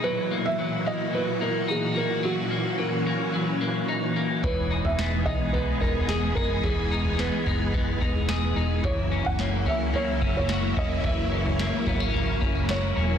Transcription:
Already playing: B2 E3 B3 D#4
0.03 A#2 F#3 F#4 B4
0.31 A#3
0.46 E5
0.59 F#3
0.86 A#3 D#5
1.13 F#3 B4
1.41 A#3 A#4
1.68 D#4 G#4
1.96 A#3 A#4
2.23 F#3 C#4 F#4
2.51 A#3
2.78 F#3 A#4
3.06 A#3
3.34 F#3
3.61 A#3
3.89 D#4
4.16 A#3
4.43 E1 E3 G#3 B3 G#4 B4 C#5, kick, floor tom
4.71 D#4
4.84 E1 E5, floor tom
4.99 B3, snare
5.26 B1 D#4 D#5, floor tom
5.53 B3 B4, floor tom
5.81 E1 D#4 A#4, kick
5.95 floor tom
6.08 G#4, snare
6.35 F#1 D#4 A#4, kick
6.63 E1 E3 G#4, kick, floor tom
6.91 D#4
7.05 floor tom
7.18 B3 B4, snare
7.46 F#1 D#4, floor tom
7.74 B3, kick, floor tom
8.01 E1 D#4, kick
8.15 floor tom
8.29 G#4, snare
8.56 E1 D#4
8.84 F#1 C#3 E3 F#3 A#3 E4 C#5, kick, floor tom
9.12 C#4
9.25 F#1 F#5, floor tom
9.39 A#3 C#5, snare
9.66 C#2 C#4 E5, floor tom
9.94 A#3 C#5, floor tom
10.22 F#1 C#4, kick
10.35 C#5, floor tom
10.49 F#4, snare
10.77 E1 C#4 D#5, kick
11.04 F#1 E3 E5, kick, floor tom
11.32 C#4
11.46 floor tom
11.59 A#3, snare
11.86 G#1 B3, floor tom
12.00 C#4
12.14 A#3, floor tom
12.41 F#1 C#4, kick
12.55 floor tom
12.69 F#4 C#5, snare
12.97 E1 C#4

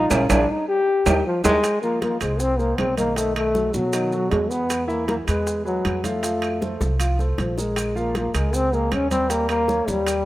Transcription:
Already playing: D#4
0.10 A#1 C#4 F4 G#4 A#4, low bongo, high conga, high timbale, claves, maracas
0.29 A#1 D4 F4 G#4 A#4, low bongo, high conga, high timbale, claves, maracas
0.50 D#4
0.68 G4
1.06 D#2 D#4 G4 A#4, low bongo, high conga, high timbale, claves, maracas
1.26 F3
1.44 D#2 G#3 D#4 G4 A#4, low bongo, high conga, high timbale, claves, maracas
1.64 high bongo, high conga, high timbale, claves, maracas
1.82 F3 A#3 F4 F5, high conga, maracas
2.02 A#3, high bongo, high conga, high timbale, maracas
2.21 C2 G#3 G#4 C5, high bongo, high conga, high timbale, claves, maracas
2.40 C4, high bongo, high conga, maracas
2.59 G#3 A#3 G#4 C5, high bongo, high conga, maracas
2.78 B1 C4, high bongo, low bongo, high conga, high timbale, low timbale, claves, maracas
2.97 D#3 A#3 D#4 D#5, high bongo, high conga, high timbale, maracas
3.16 D#3 A3 D#4 D#5, high bongo, high conga, high timbale, maracas
3.36 A3, high conga, high timbale, claves, maracas
3.54 F#3 F#4 A4, high bongo, high conga, maracas
3.74 B2 F#3, high bongo, high conga, maracas
3.93 D#3 D#4 D#5, high bongo, high conga, high timbale, claves, maracas
4.12 F#3 F#4 A4, high bongo, high conga, maracas
4.31 E2 G#3, high bongo, low bongo, high conga, high timbale, low timbale, maracas
4.50 G#3 B3 G#4 B4, high bongo, high conga, maracas
4.70 high bongo, high conga, high timbale, claves, maracas
4.88 E3 A#3 E4 E5, high conga, maracas
5.08 A#3, high bongo, high conga, high timbale, maracas
5.27 E2 G#3 G#4 B4, high bongo, high conga, high timbale, claves, maracas
5.47 high bongo, high conga, maracas
5.65 F#3 G#3 G#4 B4, high bongo, high conga, maracas
5.85 F2, high bongo, low bongo, high conga, high timbale, claves, maracas
6.04 F3 A3 F4 F5, high bongo, high conga, high timbale, maracas
6.23 F3 F4 F5, high bongo, high conga, high timbale, maracas
6.42 high conga, high timbale, claves, maracas
6.61 A3 A4 C5, high bongo, high conga, maracas
6.81 C2, high bongo, high conga, maracas
7.00 F3 F4 F5, high conga, high timbale, claves, maracas
7.19 A3 A4 C5, low bongo, high conga, maracas
7.38 A#1 F3, low bongo, high conga, high timbale, maracas
7.58 G#3 G#4 A#4, low bongo, high conga, maracas
7.76 high bongo, high conga, high timbale, claves, maracas
7.95 F3 A#3 F4 F5, high conga, maracas
8.15 A#3, high bongo, high conga, high timbale, maracas
8.34 C#2 G#3 G#4 A#4, high bongo, high conga, high timbale, claves, maracas
8.53 C4, high bongo, high conga, maracas
8.72 G#3 A#3 G#4 A#4, high bongo, high conga, maracas
8.91 D#2 C#4, high bongo, low bongo, high conga, high timbale, claves, maracas
9.11 G3 C4 G4 G5, high bongo, high conga, high timbale, maracas
9.30 G3 A#3 G4 G5, high bongo, high conga, high timbale, maracas
9.49 A#3, high conga, high timbale, claves, maracas
9.68 A#3 A#4 C#5, high bongo, high conga, maracas
9.88 D#2 G3, high bongo, high conga, maracas
10.06 G3 G4 G5, high bongo, high conga, high timbale, claves, maracas

